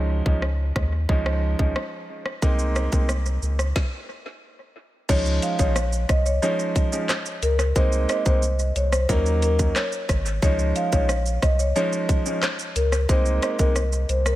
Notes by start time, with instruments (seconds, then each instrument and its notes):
Already playing: sub bass C#2, grand piano F3 G#3 C#4 D#4
0.25 sub bass C#2, grand piano F3 G#3 C#4 D#4, kick
0.42 cross-stick
0.76 sub bass D#2, kick, cross-stick
1.09 sub bass C#2, grand piano F3 G#3 C#4 D#4, kick
1.26 cross-stick
1.59 sub bass C#2, grand piano F3 G#3 C#4 D#4, kick
1.76 cross-stick
2.26 cross-stick
2.42 sub bass C2, grand piano G#3 A#3 C4 D#4, kick, shaker
2.59 shaker
2.76 cross-stick, shaker
2.92 sub bass C2, grand piano G#3 A#3 C4 D#4, kick, shaker
3.09 cross-stick, shaker
3.26 shaker
3.42 sub bass C#2, shaker
3.59 cross-stick, shaker
3.76 kick, snare
5.09 sub bass C#2, grand piano F3 G#3 C#4 D#4, marimba C#5, kick, crash, shaker
5.26 shaker
5.42 marimba F5, closed hi-hat, shaker
5.59 sub bass A#1, grand piano F3 G#3 C#4 D#4, marimba C#5, kick, shaker
5.76 cross-stick, shaker
5.93 shaker
6.09 sub bass C2, marimba D#5, kick, cross-stick, closed hi-hat, shaker
6.26 marimba C#5, shaker
6.42 grand piano F3 G#3 C#4 D#4, marimba C#5, shaker
6.59 shaker
6.76 kick, closed hi-hat, shaker
6.92 grand piano F3 G#3 C#4 D#4, shaker
7.09 cross-stick, clap, shaker
7.26 shaker
7.42 sub bass C#2, marimba A#4, closed hi-hat, shaker
7.59 cross-stick, shaker
7.76 sub bass C2, grand piano G#3 A#3 C4 D#4, marimba C5, kick, shaker
7.92 shaker
8.09 marimba D#5, cross-stick, closed hi-hat, shaker
8.26 sub bass C2, grand piano G#3 A#3 C4 D#4, marimba C5, kick, shaker
8.42 shaker
8.59 shaker
8.76 sub bass C2, marimba C#5, closed hi-hat, shaker
8.92 marimba C5, cross-stick, shaker
9.09 sub bass D#2, grand piano F#3 A#3 C#4 D#4, marimba A#4, kick, shaker
9.26 shaker
9.42 marimba A#4, closed hi-hat, shaker
9.59 grand piano F#3 A#3 C#4 D#4, kick, shaker
9.76 marimba C#5, cross-stick, clap, shaker
9.92 shaker
10.09 sub bass G#1, kick, cross-stick, closed hi-hat, shaker
10.26 shaker
10.42 sub bass C#2, grand piano F3 G#3 C#4 D#4, marimba C#5, kick, shaker
10.59 shaker
10.76 marimba F5, closed hi-hat, shaker
10.92 sub bass A#1, grand piano F3 G#3 C#4 D#4, marimba C#5, kick, shaker
11.09 cross-stick, shaker
11.26 shaker
11.42 sub bass C2, marimba D#5, kick, cross-stick, closed hi-hat, shaker
11.59 marimba C#5, shaker
11.76 grand piano F3 G#3 C#4 D#4, marimba C#5, shaker
11.93 shaker
12.09 kick, closed hi-hat, shaker
12.26 grand piano F3 G#3 C#4 D#4, shaker
12.42 cross-stick, clap, shaker
12.59 shaker
12.76 sub bass C#2, marimba A#4, closed hi-hat, shaker
12.92 cross-stick, shaker
13.09 sub bass C2, grand piano G#3 A#3 C4 D#4, marimba C5, kick, shaker
13.26 shaker
13.42 marimba D#5, cross-stick, closed hi-hat, shaker
13.59 sub bass C2, grand piano G#3 A#3 C4 D#4, marimba A#4, kick, shaker
13.76 cross-stick, shaker
13.93 shaker
14.09 sub bass C2, marimba C5, closed hi-hat, shaker
14.26 marimba A#4, cross-stick, shaker